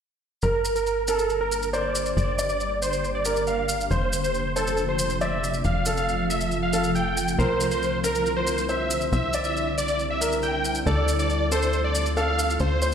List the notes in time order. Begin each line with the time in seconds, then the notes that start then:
0.42 G1 A#4, maracas
0.65 maracas
0.75 A#4, maracas
0.86 maracas
1.08 A4 A#4, maracas
1.19 maracas
1.30 maracas
1.41 A#4
1.52 maracas
1.63 maracas
1.73 C5 D5, maracas
1.95 maracas
2.06 maracas
2.17 G1 D5, maracas
2.39 D5, maracas
2.49 D5, maracas
2.60 maracas
2.82 C5, maracas
2.93 maracas
3.04 maracas
3.15 D5
3.25 A#4, maracas
3.36 maracas
3.47 F5, maracas
3.69 maracas
3.81 maracas
3.91 F1 C5, maracas
4.13 maracas
4.23 C5, maracas
4.34 maracas
4.56 A4 C5, maracas
4.67 maracas
4.77 maracas
4.89 C5
4.99 maracas
5.10 maracas
5.21 D5 E5, maracas
5.44 maracas
5.54 maracas
5.64 F1 F5, maracas
5.86 A4, maracas
5.97 F5, maracas
6.09 maracas
6.30 E5, maracas
6.41 maracas
6.51 maracas
6.63 F5
6.73 A4, maracas
6.84 maracas
6.95 G5, maracas
7.17 maracas
7.28 maracas
7.39 C2 A#4 C5, maracas
7.60 maracas
7.71 C5, maracas
7.83 maracas
8.04 A#4, maracas
8.15 maracas
8.26 maracas
8.36 C5
8.47 maracas
8.58 maracas
8.69 C5 E5, maracas
8.90 maracas
9.01 maracas
9.12 C2 E5, maracas
9.33 D5, maracas
9.44 E5, maracas
9.57 maracas
9.78 D5, maracas
9.88 maracas
9.99 maracas
10.10 E5
10.21 A#4, maracas
10.32 maracas
10.42 G5, maracas
10.65 maracas
10.75 maracas
10.86 D2 A4 D5, maracas
11.08 maracas
11.19 D5, maracas
11.30 maracas
11.52 A4 C5, maracas
11.62 maracas
11.73 maracas
11.84 D5
11.95 maracas
12.06 maracas
12.17 A4 F5, maracas
12.39 maracas
12.50 maracas
12.60 D2 C5, maracas
12.82 C5, maracas